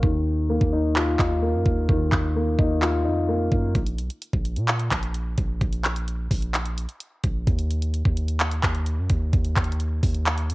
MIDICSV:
0, 0, Header, 1, 4, 480
1, 0, Start_track
1, 0, Tempo, 465116
1, 31, Time_signature, 4, 2, 24, 8
1, 10882, End_track
2, 0, Start_track
2, 0, Title_t, "Grand piano"
2, 0, Program_c, 0, 0
2, 0, Control_c, 0, 64, 127
2, 27, Note_on_c, 0, 51, 89
2, 46, Control_c, 0, 64, 0
2, 245, Control_c, 0, 64, 127
2, 512, Note_on_c, 0, 58, 87
2, 752, Note_on_c, 0, 63, 80
2, 992, Note_on_c, 0, 65, 107
2, 1213, Note_off_c, 0, 63, 0
2, 1229, Note_off_c, 0, 51, 0
2, 1229, Note_on_c, 0, 63, 79
2, 1453, Note_off_c, 0, 58, 0
2, 1468, Note_on_c, 0, 58, 87
2, 1954, Note_on_c, 0, 51, 94
2, 2192, Note_off_c, 0, 65, 0
2, 2422, Note_off_c, 0, 58, 0
2, 2430, Note_off_c, 0, 63, 0
2, 2438, Note_on_c, 0, 58, 86
2, 2669, Note_on_c, 0, 63, 88
2, 2908, Note_on_c, 0, 65, 106
2, 3131, Note_off_c, 0, 63, 0
2, 3147, Note_on_c, 0, 63, 87
2, 3152, Note_off_c, 0, 51, 0
2, 3376, Note_off_c, 0, 58, 0
2, 3391, Note_on_c, 0, 58, 89
2, 3869, Note_off_c, 0, 63, 0
2, 3869, Note_off_c, 0, 65, 0
2, 3871, Note_off_c, 0, 58, 0
2, 3885, Control_c, 0, 64, 0
2, 10882, End_track
3, 0, Start_track
3, 0, Title_t, "808-style bass"
3, 0, Program_c, 1, 38
3, 31, Note_on_c, 1, 39, 109
3, 607, Note_off_c, 1, 39, 0
3, 631, Note_on_c, 1, 39, 103
3, 1207, Note_off_c, 1, 39, 0
3, 1231, Note_on_c, 1, 39, 110
3, 1591, Note_on_c, 1, 42, 99
3, 1607, Note_off_c, 1, 39, 0
3, 1705, Note_off_c, 1, 42, 0
3, 1711, Note_on_c, 1, 39, 97
3, 1941, Note_off_c, 1, 39, 0
3, 1951, Note_on_c, 1, 39, 111
3, 2181, Note_off_c, 1, 39, 0
3, 2191, Note_on_c, 1, 39, 104
3, 2652, Note_off_c, 1, 39, 0
3, 2671, Note_on_c, 1, 39, 108
3, 3151, Note_on_c, 1, 41, 95
3, 3167, Note_off_c, 1, 39, 0
3, 3607, Note_off_c, 1, 41, 0
3, 3630, Note_on_c, 1, 42, 99
3, 3861, Note_off_c, 1, 42, 0
3, 3871, Note_on_c, 1, 34, 108
3, 4111, Note_on_c, 1, 35, 97
3, 4126, Note_off_c, 1, 34, 0
3, 4225, Note_off_c, 1, 35, 0
3, 4471, Note_on_c, 1, 34, 103
3, 4711, Note_on_c, 1, 46, 97
3, 4726, Note_off_c, 1, 34, 0
3, 5053, Note_off_c, 1, 46, 0
3, 5071, Note_on_c, 1, 34, 105
3, 5532, Note_off_c, 1, 34, 0
3, 5550, Note_on_c, 1, 34, 101
3, 5781, Note_off_c, 1, 34, 0
3, 5790, Note_on_c, 1, 34, 109
3, 6482, Note_off_c, 1, 34, 0
3, 6510, Note_on_c, 1, 34, 102
3, 7086, Note_off_c, 1, 34, 0
3, 7470, Note_on_c, 1, 34, 99
3, 7701, Note_off_c, 1, 34, 0
3, 7711, Note_on_c, 1, 39, 112
3, 8287, Note_off_c, 1, 39, 0
3, 8311, Note_on_c, 1, 39, 103
3, 8887, Note_off_c, 1, 39, 0
3, 8911, Note_on_c, 1, 39, 105
3, 9271, Note_on_c, 1, 42, 100
3, 9286, Note_off_c, 1, 39, 0
3, 9385, Note_off_c, 1, 42, 0
3, 9390, Note_on_c, 1, 39, 103
3, 9621, Note_off_c, 1, 39, 0
3, 9631, Note_on_c, 1, 39, 108
3, 9861, Note_off_c, 1, 39, 0
3, 9871, Note_on_c, 1, 39, 104
3, 10332, Note_off_c, 1, 39, 0
3, 10350, Note_on_c, 1, 39, 107
3, 10831, Note_on_c, 1, 41, 99
3, 10846, Note_off_c, 1, 39, 0
3, 10882, Note_off_c, 1, 41, 0
3, 10882, End_track
4, 0, Start_track
4, 0, Title_t, "Drums"
4, 31, Note_on_c, 9, 36, 109
4, 134, Note_off_c, 9, 36, 0
4, 631, Note_on_c, 9, 36, 94
4, 734, Note_off_c, 9, 36, 0
4, 991, Note_on_c, 9, 39, 111
4, 1095, Note_off_c, 9, 39, 0
4, 1231, Note_on_c, 9, 36, 97
4, 1231, Note_on_c, 9, 39, 109
4, 1334, Note_off_c, 9, 36, 0
4, 1334, Note_off_c, 9, 39, 0
4, 1710, Note_on_c, 9, 36, 102
4, 1814, Note_off_c, 9, 36, 0
4, 1951, Note_on_c, 9, 36, 110
4, 2054, Note_off_c, 9, 36, 0
4, 2191, Note_on_c, 9, 36, 92
4, 2191, Note_on_c, 9, 39, 92
4, 2294, Note_off_c, 9, 39, 0
4, 2295, Note_off_c, 9, 36, 0
4, 2671, Note_on_c, 9, 36, 101
4, 2774, Note_off_c, 9, 36, 0
4, 2911, Note_on_c, 9, 39, 110
4, 3014, Note_off_c, 9, 39, 0
4, 3630, Note_on_c, 9, 36, 98
4, 3734, Note_off_c, 9, 36, 0
4, 3871, Note_on_c, 9, 36, 111
4, 3871, Note_on_c, 9, 42, 70
4, 3974, Note_off_c, 9, 36, 0
4, 3974, Note_off_c, 9, 42, 0
4, 3988, Note_on_c, 9, 42, 64
4, 4092, Note_off_c, 9, 42, 0
4, 4112, Note_on_c, 9, 42, 74
4, 4215, Note_off_c, 9, 42, 0
4, 4232, Note_on_c, 9, 42, 54
4, 4335, Note_off_c, 9, 42, 0
4, 4352, Note_on_c, 9, 42, 73
4, 4456, Note_off_c, 9, 42, 0
4, 4471, Note_on_c, 9, 36, 95
4, 4574, Note_off_c, 9, 36, 0
4, 4592, Note_on_c, 9, 42, 72
4, 4695, Note_off_c, 9, 42, 0
4, 4709, Note_on_c, 9, 42, 51
4, 4812, Note_off_c, 9, 42, 0
4, 4828, Note_on_c, 9, 42, 77
4, 4831, Note_on_c, 9, 39, 110
4, 4931, Note_off_c, 9, 42, 0
4, 4934, Note_off_c, 9, 39, 0
4, 4948, Note_on_c, 9, 42, 65
4, 5051, Note_off_c, 9, 42, 0
4, 5070, Note_on_c, 9, 39, 106
4, 5071, Note_on_c, 9, 36, 94
4, 5073, Note_on_c, 9, 42, 85
4, 5173, Note_off_c, 9, 39, 0
4, 5174, Note_off_c, 9, 36, 0
4, 5177, Note_off_c, 9, 42, 0
4, 5188, Note_on_c, 9, 42, 51
4, 5291, Note_off_c, 9, 42, 0
4, 5307, Note_on_c, 9, 42, 76
4, 5410, Note_off_c, 9, 42, 0
4, 5548, Note_on_c, 9, 42, 79
4, 5550, Note_on_c, 9, 36, 104
4, 5651, Note_off_c, 9, 42, 0
4, 5653, Note_off_c, 9, 36, 0
4, 5790, Note_on_c, 9, 36, 110
4, 5790, Note_on_c, 9, 42, 69
4, 5894, Note_off_c, 9, 36, 0
4, 5894, Note_off_c, 9, 42, 0
4, 5908, Note_on_c, 9, 42, 63
4, 6012, Note_off_c, 9, 42, 0
4, 6030, Note_on_c, 9, 39, 94
4, 6031, Note_on_c, 9, 42, 73
4, 6133, Note_off_c, 9, 39, 0
4, 6134, Note_off_c, 9, 42, 0
4, 6151, Note_on_c, 9, 42, 54
4, 6254, Note_off_c, 9, 42, 0
4, 6272, Note_on_c, 9, 42, 71
4, 6375, Note_off_c, 9, 42, 0
4, 6510, Note_on_c, 9, 36, 99
4, 6512, Note_on_c, 9, 46, 75
4, 6613, Note_off_c, 9, 36, 0
4, 6615, Note_off_c, 9, 46, 0
4, 6629, Note_on_c, 9, 42, 52
4, 6732, Note_off_c, 9, 42, 0
4, 6748, Note_on_c, 9, 42, 78
4, 6751, Note_on_c, 9, 39, 106
4, 6851, Note_off_c, 9, 42, 0
4, 6854, Note_off_c, 9, 39, 0
4, 6868, Note_on_c, 9, 42, 64
4, 6971, Note_off_c, 9, 42, 0
4, 6994, Note_on_c, 9, 42, 83
4, 7097, Note_off_c, 9, 42, 0
4, 7108, Note_on_c, 9, 42, 51
4, 7211, Note_off_c, 9, 42, 0
4, 7228, Note_on_c, 9, 42, 77
4, 7331, Note_off_c, 9, 42, 0
4, 7468, Note_on_c, 9, 42, 85
4, 7470, Note_on_c, 9, 36, 99
4, 7571, Note_off_c, 9, 42, 0
4, 7573, Note_off_c, 9, 36, 0
4, 7711, Note_on_c, 9, 36, 111
4, 7711, Note_on_c, 9, 42, 74
4, 7814, Note_off_c, 9, 36, 0
4, 7814, Note_off_c, 9, 42, 0
4, 7829, Note_on_c, 9, 42, 63
4, 7932, Note_off_c, 9, 42, 0
4, 7952, Note_on_c, 9, 42, 77
4, 8055, Note_off_c, 9, 42, 0
4, 8071, Note_on_c, 9, 42, 57
4, 8174, Note_off_c, 9, 42, 0
4, 8192, Note_on_c, 9, 42, 74
4, 8295, Note_off_c, 9, 42, 0
4, 8310, Note_on_c, 9, 36, 96
4, 8414, Note_off_c, 9, 36, 0
4, 8432, Note_on_c, 9, 42, 75
4, 8535, Note_off_c, 9, 42, 0
4, 8548, Note_on_c, 9, 42, 52
4, 8652, Note_off_c, 9, 42, 0
4, 8668, Note_on_c, 9, 42, 78
4, 8670, Note_on_c, 9, 39, 112
4, 8771, Note_off_c, 9, 42, 0
4, 8774, Note_off_c, 9, 39, 0
4, 8788, Note_on_c, 9, 42, 62
4, 8891, Note_off_c, 9, 42, 0
4, 8911, Note_on_c, 9, 36, 95
4, 8911, Note_on_c, 9, 39, 110
4, 8914, Note_on_c, 9, 42, 84
4, 9014, Note_off_c, 9, 36, 0
4, 9014, Note_off_c, 9, 39, 0
4, 9017, Note_off_c, 9, 42, 0
4, 9028, Note_on_c, 9, 42, 53
4, 9131, Note_off_c, 9, 42, 0
4, 9147, Note_on_c, 9, 42, 74
4, 9251, Note_off_c, 9, 42, 0
4, 9388, Note_on_c, 9, 42, 81
4, 9390, Note_on_c, 9, 36, 98
4, 9491, Note_off_c, 9, 42, 0
4, 9493, Note_off_c, 9, 36, 0
4, 9631, Note_on_c, 9, 36, 115
4, 9631, Note_on_c, 9, 42, 72
4, 9734, Note_off_c, 9, 36, 0
4, 9734, Note_off_c, 9, 42, 0
4, 9749, Note_on_c, 9, 42, 62
4, 9852, Note_off_c, 9, 42, 0
4, 9871, Note_on_c, 9, 36, 91
4, 9871, Note_on_c, 9, 39, 93
4, 9871, Note_on_c, 9, 42, 76
4, 9951, Note_off_c, 9, 42, 0
4, 9951, Note_on_c, 9, 42, 59
4, 9974, Note_off_c, 9, 36, 0
4, 9974, Note_off_c, 9, 39, 0
4, 10031, Note_off_c, 9, 42, 0
4, 10031, Note_on_c, 9, 42, 46
4, 10113, Note_off_c, 9, 42, 0
4, 10113, Note_on_c, 9, 42, 76
4, 10216, Note_off_c, 9, 42, 0
4, 10350, Note_on_c, 9, 36, 104
4, 10353, Note_on_c, 9, 46, 74
4, 10453, Note_off_c, 9, 36, 0
4, 10456, Note_off_c, 9, 46, 0
4, 10469, Note_on_c, 9, 42, 53
4, 10572, Note_off_c, 9, 42, 0
4, 10588, Note_on_c, 9, 42, 79
4, 10591, Note_on_c, 9, 39, 111
4, 10691, Note_off_c, 9, 42, 0
4, 10694, Note_off_c, 9, 39, 0
4, 10708, Note_on_c, 9, 42, 63
4, 10811, Note_off_c, 9, 42, 0
4, 10834, Note_on_c, 9, 42, 86
4, 10882, Note_off_c, 9, 42, 0
4, 10882, End_track
0, 0, End_of_file